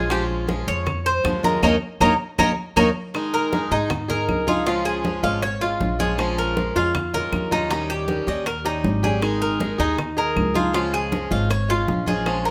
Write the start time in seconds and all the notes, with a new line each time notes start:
Already playing: A#1 G#4
0.10 F3 G#3 C#4 F4 G4, high bongo, high conga, claves
0.30 high conga
0.47 F3 G#3 C#4 F4, high bongo, high conga
0.67 F2 C#5, high conga
0.86 muted steel-string acoustic guitar stroke, high bongo, high conga, low conga, claves
1.06 C5, high conga
1.24 D#2 F3 G#3 C#4 F4, high bongo, low bongo, high conga, claves
1.43 G#3 C#4 F4 A#4, high conga
1.62 D#2 A#3 C#4 D#4 A#4 C#5 D#5, low bongo, high conga, claves
2.00 D#2 A#3 C#4 D#4 A#4 C#5 D#5, low bongo, high conga, claves
2.38 D#2 A#3 C#4 D#4 A#4 C#5 D#5, low bongo, high conga, claves
2.76 D#2 A#3 C#4 D#4 A#4 C#5 D#5, low bongo, high conga, claves
3.14 D#3 G#3 D#4 G#4, high bongo, high conga, claves
3.34 A#4, high conga
3.52 D#3 G#3 D#4 G#4, high bongo, high conga
3.71 G#2 G#3 D#4 G#4, high bongo
3.90 muted steel-string acoustic guitar stroke, high bongo, high conga, low conga, claves
4.08 G#3 D#4 G#4 A#4, high bongo, high conga, low conga
4.28 C#2, high bongo, low bongo, high conga, claves
4.47 G#3 D#4 F4 G#4, high bongo, high conga
4.66 C#3 F3 G#3 C#4 F4, high bongo, high conga
4.85 G#4, high conga, claves
5.04 F3 G#3 C#4 F4, high bongo, high conga
5.23 G#1 F3 G#3 C#4 F4 F5, high bongo, high conga
5.42 C#5, muted steel-string acoustic guitar stroke, high bongo, high conga, claves
5.61 G#3 C#4 F4, high bongo, high conga
5.80 A#1, high bongo, low bongo, high conga
5.99 F3 G#3 C#4 F4 G#4, high bongo, high conga
6.18 F3 G#3 C#4 F4, high bongo, claves
6.38 A#4, high conga
6.57 F3 G#3 C#4 F4, high bongo, high conga
6.75 F2 G#3 C#4 F4, high bongo
6.95 muted steel-string acoustic guitar stroke, high bongo, high conga, low conga, claves
7.14 G#3 C#4 F4 A#4, high bongo, high conga, low conga
7.32 D#2, high bongo, low bongo, high conga, claves
7.51 G#3 C#4 D#4 F4, high bongo, high conga
7.70 D#3 G3 C#4 D#4 G4, high bongo, high conga
7.89 G4, high conga, claves
8.08 D#3 G3 C#4 G4, high bongo, high conga
8.27 D#2 G3 C#4 G4 D#5, high bongo, high conga
8.46 A#4, muted steel-string acoustic guitar stroke, high bongo, high conga, claves
8.65 G3 C#4 D#4 G4, high bongo, high conga
8.84 G#1, high bongo, low bongo, high conga
9.03 G3 C#4 G4 G#4, high bongo, high conga
9.21 D#3 G#3 D#4 G#4, high bongo, high conga, claves
9.41 A#4, high conga
9.60 D#3 G#3 D#4 G#4, high bongo, high conga
9.78 D#2 G#3 D#4 G#4, high bongo
9.98 muted steel-string acoustic guitar stroke, high bongo, high conga, low conga, claves
10.17 G#3 D#4 G#4 A#4, high bongo, high conga
10.36 C#2, high bongo, low bongo, high conga, claves
10.54 G#3 D#4 F4 G#4, high bongo, high conga
10.73 C#3 F3 G#3 C#4 F4, high bongo, high conga
10.93 G#4, high conga, claves
11.11 F3 G#3 C#4 F4, high bongo, high conga
11.31 G#1 F3 G#3 C#4 F4 F5, high bongo, high conga
11.50 C#5, muted steel-string acoustic guitar stroke, high bongo, high conga, claves
11.68 G#3 C#4 F4, high bongo, high conga
11.88 A#1, high bongo, low bongo, high conga
12.06 F3 G#3 C#4 F4 G#4, high bongo, high conga
12.26 F3 G#3 C#4 F4, high bongo, high conga, claves
12.44 A#4, high conga